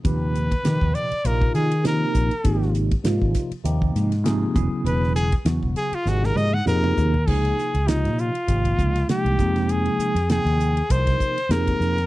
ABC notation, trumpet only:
X:1
M:4/4
L:1/16
Q:"Swing 16ths" 1/4=99
K:Eb
V:1 name="Trumpet"
_c6 d2 B2 A2 B4- | B2 z12 z2 | =B2 ^G2 z2 G F _G _B e _g B4 | [K:Dblyd] A4 E2 F6 G4 |
A4 A4 c4 B4 |]